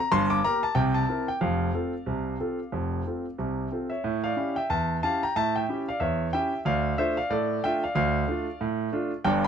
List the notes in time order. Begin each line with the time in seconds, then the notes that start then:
0.00 A#5
0.12 G1 G2 C6
0.30 D6
0.44 A#3 G4 A#4 A#5
0.63 A5
0.75 C2 C3 G5
0.94 A5
1.09 C4 E4 A#4
1.28 G5
1.41 F1 F2 F5
1.74 C4 F4 A4
2.06 C2 C3
2.40 C4 F4 A4
2.72 F1 F2
3.07 C4 F4 A4
3.38 C2 C3
3.72 C4 F4 A4
3.90 C#5 E5
4.04 A2
4.24 D5 F5
4.36 C#4 E4 G4
4.56 E5 G5
4.70 E2 E5 A5
5.03 C#4 E4 G4 F5 A5
5.23 G5 A#5
5.36 A2 E5 A5
5.56 E5 G5
5.69 C#4 E4 G4
5.88 D5 F5
6.00 E2 C#5 E5
6.33 C#4 E4 G4 E5 G5
6.65 D2 D5 F5
6.98 A3 D4 F4 C5 E5
7.17 D5 F5
7.30 A2 A4 D5
7.64 A3 D4 F4 E5 G5
7.84 D5 F5
7.95 D2 D5 F5
8.28 A3 D4 F4
8.61 A2
8.92 A3 D4 F4
9.24 G1 G2 D5 G5